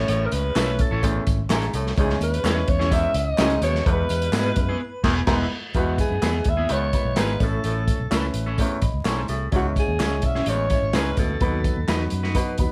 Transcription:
Already playing: A3 C#4 E4 C#5
0.08 A1 A2, closed hi-hat
0.26 A#4
0.32 C#2 B4, closed hi-hat, tambourine
0.55 B1 A3 C#4 E4 A4 B4, snare, clap, closed hi-hat, tambourine
0.62 C#5
0.79 A4, kick, closed hi-hat, tambourine
0.91 A1 C#4 E4 A4
1.03 E2 A3 C#4 E4 C#5, kick, closed hi-hat, tambourine
1.27 G#1, kick, closed hi-hat, tambourine
1.49 A1 G#2 C#4 E4 G#4 A4 E5, snare, clap, closed hi-hat, tambourine
1.62 closed hi-hat
1.73 C2 A2 C#5 A5, closed hi-hat, tambourine
1.87 snare
1.96 C#2 E2 G#3 C#4 D#4 G#4 C#5, kick, closed hi-hat, tambourine
2.03 E4
2.10 snare
2.20 D#2 B4, closed hi-hat, tambourine
2.34 closed hi-hat
2.44 E2 G#3 C#4 E4 G#4 C#5, snare, clap, closed hi-hat, tambourine
2.68 E2 C#5, kick, closed hi-hat
2.79 C#4 E4 G#4, snare
2.91 E2 G#3 C#4 E4 E5, kick, closed hi-hat, tambourine
3.14 C#2 D#5, closed hi-hat, tambourine
3.38 C#2 G#2 G#3 C#4 E4 F#4 G#4, snare, clap, closed hi-hat, tambourine
3.46 G#4
3.50 closed hi-hat
3.62 D#2 B2 C#5, closed hi-hat, tambourine
3.75 snare
3.85 E2 G#3 B3 E4 A4 B4, kick, closed hi-hat
3.93 B4
4.09 E2, closed hi-hat, tambourine
4.22 closed hi-hat
4.32 G#2 G#3 B3 E4 G#4 B4, snare, clap, closed hi-hat, tambourine
4.56 F#2 B5, kick, closed hi-hat
4.69 B3 E4 G#4
5.03 E1 E2 B3 E4 G#4, kick, snare, crash
5.26 E1 G#2 G#3 B3 E4 G#4 E5, kick, snare, crash
5.33 B4
5.74 E2 G#3 B3 E4 F#4 B4, kick, closed hi-hat, tambourine
5.98 G#4, kick, closed hi-hat, tambourine
6.10 F#2
6.21 E2 G#3 B3 E4 G#4 B4, snare, clap, closed hi-hat, tambourine
6.44 D#2, kick, closed hi-hat, tambourine
6.49 E5
6.57 B3 E4 G#4
6.68 C#2 E2 G#3 B3 E4 B4, closed hi-hat, tambourine
6.72 C#5
6.93 G#3 B3 E4 B4, kick, closed hi-hat, tambourine
7.05 B1
7.16 G#1 G#2 G#3 B3 E4 G#4 B4, snare, clap, closed hi-hat, tambourine
7.39 A1 A2 A3 C#4 E4 C#5, kick, closed hi-hat, tambourine
7.44 A4
7.64 A1 A2, closed hi-hat, tambourine
7.88 kick, closed hi-hat, tambourine
8.00 B1
8.11 C#2 A3 C#4 E4 A4 A#4, snare, clap, closed hi-hat, tambourine
8.16 B4
8.34 A1, closed hi-hat, tambourine
8.46 C#4 E4 A4
8.58 E2 A3 C#4 E4 C#5, kick, closed hi-hat, tambourine
8.82 A1 D#5 B5, kick, closed hi-hat, tambourine
8.94 C#2
9.05 B1 G#2 C#4 E4 A4 C#5 A5, snare, clap, closed hi-hat, tambourine
9.28 C2 A2 G#4 E5, closed hi-hat, tambourine
9.51 C#2 E2 G#3 C#4 E4 C#5, kick, closed hi-hat, tambourine
9.56 F#4
9.76 G#4, kick, closed hi-hat, tambourine
9.88 D#2
9.98 C#2 G#3 C#4 E4 G#4 C#5, snare, clap, closed hi-hat, tambourine
10.22 B1 E5, kick, closed hi-hat, tambourine
10.35 C#4 E4 G#4, snare
10.46 A1 E2 G#3 C#4 E4 C#5, closed hi-hat, tambourine
10.70 G#3 C#4 E4 C#5, kick, closed hi-hat, tambourine
10.82 G#1
10.93 C#2 G#2 G#3 C#4 E4 G#4 B4 C#5, snare, clap, closed hi-hat, tambourine
11.17 D2 B2 A4, kick, closed hi-hat, tambourine
11.40 D#2 B2 F#3 B3 D#4 B4, kick, closed hi-hat, tambourine
11.64 kick, closed hi-hat, tambourine
11.77 D#2
11.88 E2 F#3 B3 D#4 F#4 B4, snare, clap, closed hi-hat, tambourine
12.10 F#2, closed hi-hat, tambourine
12.23 D#4 F#4 B4, snare
12.35 B2 F#3 B3 D#4 B4, kick, closed hi-hat, tambourine
12.58 D#2 F#3 B3 D#4 B4, kick, closed hi-hat, tambourine

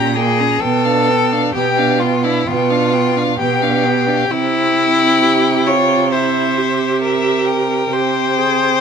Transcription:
Already playing: A#2 C#4 G4 A#5
0.14 A#3 G#4 G5
0.39 C#4 A#5
0.60 B2 B3 A4 G5
0.85 D4 F5
1.09 B3 G5
1.31 D4 F5
1.54 B2 B3 G4 G5
1.77 D4 F5
2.00 B3 F4 G5
2.23 D4 E4 F5
2.47 B2 B3 F4 G5
2.70 D4 F5
2.93 B3 G5
3.16 D4 F5
3.38 B2 B3 G4 G5
3.62 D4 F5
3.84 B3 G5
4.07 D4 F5
4.29 C3 C4 E4 G5
5.21 G4
5.67 F4 C#5
6.12 E4 C5 E5
6.57 G4
7.02 A#4 E5
7.46 G5
7.92 C3 G4 C5
8.38 G#4

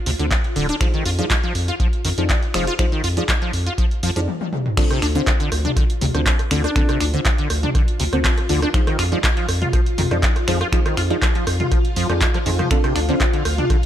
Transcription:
Already playing: F4
0.06 D2 C3, open hi-hat
0.19 D2 D3 C4 D4 F4 C5, closed hi-hat
0.31 kick, clap, closed hi-hat
0.44 closed hi-hat
0.56 D1 D3 C4 D4 F4 A4, open hi-hat
0.69 D4, closed hi-hat
0.81 F3 D#4 F4 G#4 C5, finger snap, kick, closed hi-hat
0.94 D#3, closed hi-hat
1.05 F2 F4, open hi-hat
1.19 F3 D#4 F4 G#4 D5, closed hi-hat
1.30 F3, kick, clap, closed hi-hat
1.43 F3, closed hi-hat
1.55 F2, open hi-hat
1.68 F4, closed hi-hat
1.80 F3, kick, closed hi-hat
1.93 closed hi-hat
2.05 F2 D#3, open hi-hat
2.18 F2 F3 D#4 F4 G#4 D5, closed hi-hat
2.29 kick, clap, closed hi-hat
2.43 closed hi-hat
2.54 F1 F3 D#4 F4 G#4 C5, finger snap, open hi-hat
2.67 F4, closed hi-hat
2.79 F3 D#4 F4 G#4 C5, finger snap, kick, closed hi-hat
2.92 D#3, closed hi-hat
3.04 F2 F4, open hi-hat
3.17 F3 D#4 F4 G#4 D5, closed hi-hat
3.29 F3, kick, clap, closed hi-hat
3.42 F3, closed hi-hat
3.53 F2, open hi-hat
3.67 F4, closed hi-hat
3.78 F3, kick, closed hi-hat
3.91 closed hi-hat
4.03 F2 F3, open hi-hat
4.16 F2 F3 D#4 F4 G#4 D5, closed hi-hat
4.28 high tom
4.41 high tom
4.53 mid tom
4.66 mid tom
4.77 D3 C4 D4 F4 A4, finger snap, kick, closed hi-hat, crash
4.90 C3, cross-stick, closed hi-hat
5.02 D2 D4, finger snap, open hi-hat
5.15 D3 C4 D4 F4 C5, closed hi-hat
5.27 D3, kick, cross-stick, clap, closed hi-hat
5.40 D3, closed hi-hat
5.52 D2, cross-stick, open hi-hat
5.65 D4, closed hi-hat, mid tom
5.76 D3, kick, cross-stick, closed hi-hat
5.90 closed hi-hat
6.01 D2 C3, open hi-hat, mid tom
6.14 D2 D3 C4 D4 F4 C5, cross-stick, closed hi-hat
6.26 kick, clap, closed hi-hat
6.39 cross-stick, closed hi-hat
6.51 D2 D3 C4 D4 F4 A4, finger snap, open hi-hat
6.64 D4, cross-stick, closed hi-hat
6.76 D3 C4 D4 F4 A4, finger snap, kick, closed hi-hat
6.89 C3, cross-stick, closed hi-hat
7.00 D2 D4, finger snap, open hi-hat
7.14 D3 C4 D4 F4 C5, closed hi-hat
7.25 D3, kick, cross-stick, clap, closed hi-hat
7.38 D3, closed hi-hat
7.50 D2, cross-stick, open hi-hat
7.63 D4, closed hi-hat, mid tom
7.75 D3, kick, cross-stick, closed hi-hat
7.88 closed hi-hat
8.00 D2 C3, open hi-hat
8.13 D2 D3 C4 D4 F4 C5, cross-stick, closed hi-hat
8.24 kick, clap, closed hi-hat
8.38 cross-stick, closed hi-hat
8.49 D2 D3 C4 D4 F4 A4, open hi-hat
8.62 D4, cross-stick, closed hi-hat
8.74 F3 D#4 F4 G#4 C5, finger snap, kick, closed hi-hat
8.87 D#3, cross-stick, closed hi-hat
8.99 F2 F4, finger snap, open hi-hat
9.12 F3 D#4 F4 G#4 D5, closed hi-hat
9.24 F3, kick, cross-stick, clap, closed hi-hat
9.37 F3, closed hi-hat
9.48 F2, cross-stick, open hi-hat
9.62 F4, closed hi-hat, mid tom
9.73 F3, kick, cross-stick, closed hi-hat
9.86 closed hi-hat
9.98 F2 D#3, open hi-hat, mid tom
10.11 F2 F3 D#4 F4 G#4 D5, cross-stick, closed hi-hat
10.23 kick, clap, closed hi-hat
10.36 cross-stick, closed hi-hat
10.48 F2 F3 D#4 F4 G#4 C5, finger snap, open hi-hat
10.61 F4, cross-stick, closed hi-hat
10.72 F3 D#4 F4 G#4 C5, finger snap, kick, closed hi-hat
10.86 D#3, cross-stick, closed hi-hat
10.97 F2 F4, finger snap, open hi-hat
11.10 F3 D#4 F4 G#4 D5, closed hi-hat
11.22 F3, kick, cross-stick, clap, closed hi-hat
11.35 F3, closed hi-hat
11.47 F2, cross-stick, open hi-hat
11.60 F4, closed hi-hat, mid tom
11.72 F3, kick, cross-stick, closed hi-hat
11.85 closed hi-hat
11.96 F2 F3, open hi-hat
12.09 F2 F3 D#4 F4 G#4 D5, cross-stick, closed hi-hat
12.21 kick, clap, closed hi-hat
12.34 F3, cross-stick, closed hi-hat
12.46 F2 D#3 D#4 F4 G#4 C5, open hi-hat
12.59 F3, cross-stick, closed hi-hat, mid tom
12.71 D3 C4 D4 F4 A4, finger snap, kick, closed hi-hat
12.84 C3, cross-stick, closed hi-hat
12.96 D2 D4, finger snap, open hi-hat
13.09 D3 C4 D4 F4 C5, closed hi-hat
13.20 D3, kick, cross-stick, clap, closed hi-hat
13.33 D3, closed hi-hat
13.45 D2, cross-stick, open hi-hat
13.58 D4, closed hi-hat, mid tom
13.70 D3, kick, cross-stick, closed hi-hat

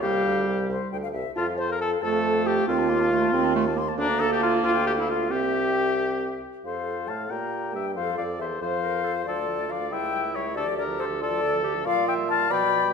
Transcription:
0.01 C2 G3 G4 F5
0.24 D2
0.47 C2
0.69 C2 C5
0.92 D2 G5
1.03 F5
1.13 C2 E5
1.35 F2 F4 A5
1.47 F5
1.57 C5 A5
1.69 A#4 F5
1.79 A4 A5
1.91 F5
2.02 F2 A3 A4 A5
2.13 F5
2.24 A5
2.35 F5
2.46 G4 A5
2.58 F5
2.68 D#2 C4 F4 C6
2.79 A5
2.89 A#3 C6
3.00 A5
3.11 A3 C6
3.22 A5
3.32 D#2 C4 C6
3.44 A5
3.55 A3 C6
3.67 A5
3.76 A#3 C6
3.88 A5
3.97 D2 D4 A#5
4.20 A4
4.31 G4 A5
4.41 F4
4.63 D2 F4 G5
4.86 G4
4.97 E4 F5
5.08 F4
5.30 C2 C4 G4 E5
6.65 F2 F3 A4 C5 F5
7.08 A2 A3 F5 A5
7.29 A#2 A#3 G4 G5 A#5
7.73 G2 G3 E5 G5
7.95 F2 F3 A4 C5 F5
8.17 F2 F3 D5 F5
8.39 E2 E3 C5 E5
8.60 F2 F3 C5 F5
8.83 A#4
9.04 A4
9.26 D2 F3 F4 A4 D5
9.37 A3
9.47 F3
9.59 A3
9.69 F3 D5 F5
9.79 A3
9.91 C#2 G3 E4 E5 G5
10.01 A3
10.12 G3
10.23 A3
10.34 G3 C#5 E5
10.45 A3
10.55 D2 D3 G4 A4 D5
10.66 F3
10.77 D3 A#4 D5
10.88 F3
10.98 D3 A4 C5
11.10 F3
11.20 D3 F4 A4 D5
11.31 F3
11.41 D3 A4
11.52 F3
11.63 D3 G4
11.75 F3
11.85 A#2 F3 F4 D5 F5
11.95 G3
12.06 F3 E5 G5
12.18 G3
12.27 F3 F5 A5
12.38 G3
12.49 B2 F3 D5 G5 B5
12.61 G3
12.72 F3
12.82 G3

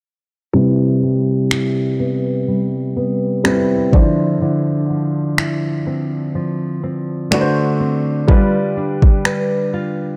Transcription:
0.53 C3 G3 C4 E4 B4
1.03 G3
1.51 E4, finger snap
2.00 B3
2.48 G3
2.97 B3
3.44 G3 C4 E4 B4, finger snap
3.92 D3 F3 D4 E4 C5, kick
4.42 D3 E4
4.90 F3
5.38 E4, finger snap
5.87 C4
6.35 F3
6.83 C4
7.31 D3 A3 D4 F#4 B4, finger snap
7.41 C5
7.80 C4
8.28 G3 D4 F4 B4, kick
8.77 D4
9.02 kick
9.25 B4, finger snap
9.74 F4

